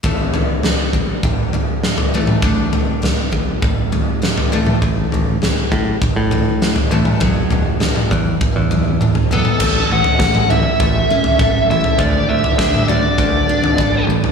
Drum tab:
CC |----------------|----------------|----------------|----------------|
SD |----o-------o---|----o-------o---|----o-------o---|----o-----------|
T2 |--------o------o|--------o------o|--------o------o|-----o--o---o--o|
FT |o-o-o---o-o--o--|o-o-o---o-o--o--|o-o-o---o-o--o--|o-o-o---o-o--o--|
BD |o-----o-o-------|o-----o-o-------|o-----o-o-------|o-----o-o-------|

CC |x---------------|----------------|
SD |----o-----------|----o-----------|
T2 |-----o------o---|-----o------o---|
FT |o--o--o-o--o---o|o--o--o-o--o---o|
BD |o---o---o---o---|o---o---o---o---|